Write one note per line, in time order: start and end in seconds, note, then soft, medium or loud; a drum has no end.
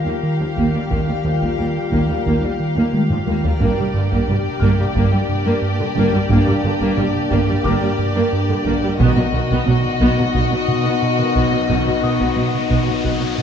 0.00 3.44 G3 soft
0.00 3.44 F4 soft
0.00 3.59 G4 soft
0.00 3.57 A#4 medium
0.00 3.57 F5 soft
0.00 3.61 F5 medium
0.00 3.60 G5 medium
0.00 1.88 A#6 soft
0.07 0.13 D#2 medium
0.07 0.23 A#3 medium
0.23 0.44 D#3 medium
0.40 0.47 D#2 soft
0.40 0.47 F3 soft
0.57 0.64 D#2 medium
0.57 0.65 D#2 medium
0.57 0.78 D#3 medium
0.57 0.73 A#3 medium
0.57 taiko medium
0.75 0.81 D#2 soft
0.75 0.82 G3 soft
0.91 0.98 D#2 medium
0.91 1.11 D#3 medium
0.91 1.07 A#3 medium
0.91 taiko medium
1.08 1.15 D#2 soft
1.08 1.16 G3 soft
1.24 1.32 D#2 soft
1.24 1.45 D#3 medium
1.24 1.32 F3 soft
1.42 1.49 D#2 medium
1.42 1.58 A#3 soft
1.42 taiko medium
1.58 1.66 D#2 soft
1.58 1.79 D#3 medium
1.58 1.66 G3 soft
1.92 1.99 D#2 medium
1.92 2.00 D#2 medium
1.92 2.12 D#3 medium
1.92 2.09 A#3 medium
1.92 taiko medium
2.09 2.16 D#2 soft
2.09 2.17 G3 soft
2.26 2.33 D#2 medium
2.26 2.46 D#3 medium
2.26 2.42 A#3 medium
2.26 taiko medium
2.42 2.49 D#2 soft
2.42 2.51 G3 soft
2.60 2.80 D#3 medium
2.76 2.83 D#2 medium
2.76 2.93 A#3 medium
2.93 3.13 D#3 medium
2.93 taiko high medium
3.11 3.17 D#2 medium
3.11 3.18 F3 medium
3.11 taiko low-mid medium
3.26 3.34 D#2 medium
3.26 3.47 D#3 medium
3.26 3.43 A#3 medium
3.26 taiko high medium
3.44 3.51 D#2 medium
3.44 3.51 G3 medium
3.44 taiko low medium
3.60 3.68 G1 medium
3.60 3.81 G2 medium
3.60 3.68 G2 medium
3.60 3.77 A#3 medium
3.60 8.97 A#3 medium
3.60 8.96 D4 medium
3.60 8.96 G4 medium
3.60 8.96 A#4 medium
3.60 8.96 D5 medium
3.60 9.00 D5 medium
3.60 8.96 G5 medium
3.60 taiko medium
3.78 3.85 G2 medium
3.78 3.85 G3 medium
3.78 taiko mid soft
3.94 4.01 G1 medium
3.94 4.14 G2 medium
3.94 4.02 G2 medium
3.94 4.02 D3 medium
4.11 4.18 G2 medium
4.11 4.27 A#3 medium
4.11 taiko medium
4.27 4.35 G1 medium
4.27 4.48 G2 medium
4.27 4.35 G2 medium
4.27 4.36 G3 medium
4.27 taiko mid soft
4.46 taiko mid soft
4.60 4.68 G1 medium
4.60 4.82 G2 medium
4.60 4.69 G2 medium
4.60 4.78 A#3 medium
4.60 6.59 F6 medium
4.60 taiko medium
4.79 4.86 G2 medium
4.79 4.86 G3 medium
4.79 taiko mid soft
4.95 5.03 G1 medium
4.95 5.16 G2 medium
4.95 5.03 G2 medium
4.95 5.12 A#3 medium
4.95 taiko medium
5.12 5.19 G2 medium
5.12 5.19 G3 medium
5.29 5.49 G2 medium
5.29 taiko mid medium
5.46 5.53 G2 medium
5.46 5.62 A#3 medium
5.62 5.83 G2 medium
5.80 5.87 G2 medium
5.80 5.86 D3 medium
5.80 taiko mid soft
5.96 6.04 G1 medium
5.96 6.17 G2 medium
5.96 6.04 G2 loud
5.96 6.13 A#3 loud
5.96 taiko medium
6.13 6.20 G2 medium
6.13 6.21 G3 medium
6.30 6.37 G1 medium
6.30 6.50 G2 medium
6.30 6.37 G2 loud
6.30 6.46 A#3 medium
6.30 taiko medium
6.47 6.54 G2 medium
6.47 6.54 G3 medium
6.47 taiko mid medium
6.63 6.71 G1 medium
6.63 6.70 G2 medium
6.63 6.84 G2 medium
6.63 6.71 D3 medium
6.81 6.88 G2 loud
6.81 6.97 A#3 medium
6.81 taiko medium
6.97 7.04 G1 medium
6.97 7.18 G2 medium
6.97 7.05 G2 medium
6.97 7.05 G3 medium
6.97 taiko mid medium
7.14 taiko mid soft
7.31 7.38 G1 medium
7.31 7.52 G2 medium
7.31 7.38 G2 medium
7.31 7.47 A#3 medium
7.31 taiko medium
7.48 7.55 G2 medium
7.48 7.55 G3 medium
7.48 taiko mid soft
7.64 7.72 G1 medium
7.64 7.85 G2 medium
7.64 7.71 G2 medium
7.64 7.81 A#3 medium
7.64 9.64 A#4 medium
7.64 9.63 D6 medium
7.64 taiko medium
7.81 7.88 G2 medium
7.81 7.89 G3 medium
7.98 8.19 G2 medium
7.98 taiko mid medium
8.16 8.23 G2 medium
8.16 8.32 A#3 medium
8.33 8.53 G2 loud
8.49 8.56 G2 medium
8.49 8.56 D3 medium
8.49 taiko mid soft
8.66 8.73 G1 medium
8.66 8.73 G2 medium
8.66 8.86 G2 medium
8.66 8.82 A#3 medium
8.66 taiko medium
8.83 8.90 G2 medium
8.83 8.90 G3 medium
9.00 9.07 B1 medium
9.00 9.07 B2 loud
9.00 9.21 B2 medium
9.00 13.42 B3 medium
9.00 9.16 B3 medium
9.00 13.42 B3 medium
9.00 13.42 D#4 medium
9.00 13.42 F#4 medium
9.00 13.42 D#5 medium
9.00 13.42 F#5 medium
9.00 taiko loud
9.00 riser medium
9.17 9.24 B2 medium
9.17 9.24 F#3 medium
9.17 taiko mid medium
9.34 9.40 B1 medium
9.34 9.41 B2 medium
9.34 9.54 B2 medium
9.34 9.40 D#3 medium
9.50 9.57 B2 medium
9.50 9.67 B3 medium
9.50 taiko medium
9.67 9.74 B1 medium
9.67 9.75 B2 medium
9.67 9.88 B2 medium
9.67 9.75 F#3 medium
9.67 taiko mid medium
9.85 taiko mid soft
10.01 10.08 B1 medium
10.01 10.09 B2 medium
10.01 10.22 B2 medium
10.01 10.17 B3 medium
10.01 taiko medium
10.18 10.26 B2 medium
10.18 10.24 F#3 medium
10.18 taiko mid soft
10.34 10.42 B1 medium
10.34 10.55 B2 medium
10.34 10.42 B2 medium
10.34 10.50 B3 medium
10.34 taiko medium
10.51 10.59 B2 medium
10.51 10.58 F#3 medium
10.68 10.89 B2 medium
10.68 taiko mid medium
10.85 10.93 B2 medium
10.85 11.01 B3 medium
11.02 11.23 B2 medium
11.18 11.26 B2 soft
11.18 11.25 D#3 medium
11.18 taiko mid soft
11.36 11.43 B1 medium
11.36 11.56 B2 medium
11.36 11.43 B2 medium
11.36 11.52 B3 medium
11.36 taiko medium
11.53 11.59 B2 soft
11.53 11.59 F#3 medium
11.69 11.76 B1 medium
11.69 11.76 B2 medium
11.69 11.90 B2 medium
11.69 11.85 B3 medium
11.69 taiko loud
11.86 11.94 B2 soft
11.86 11.93 F#3 soft
11.86 taiko mid soft
12.03 12.10 B1 soft
12.03 12.10 B2 soft
12.03 12.24 B2 medium
12.03 12.10 D#3 soft
12.03 13.42 D#6 medium
12.19 12.27 B2 medium
12.19 12.36 B3 medium
12.19 taiko medium
12.36 12.44 B1 soft
12.36 12.44 B2 soft
12.36 12.58 B2 medium
12.36 12.43 F#3 soft
12.36 taiko mid soft
12.54 taiko mid soft
12.70 12.78 B1 medium
12.70 12.91 B2 medium
12.70 12.78 B2 medium
12.70 12.86 B3 medium
12.70 taiko medium
12.87 12.95 B2 soft
12.87 12.94 F#3 soft
12.87 taiko mid soft
13.04 13.12 B1 medium
13.04 13.11 B2 medium
13.04 13.25 B2 medium
13.04 13.20 B3 medium
13.04 taiko medium
13.21 13.28 B2 soft
13.21 13.28 F#3 soft
13.38 13.42 B2 medium
13.38 taiko mid soft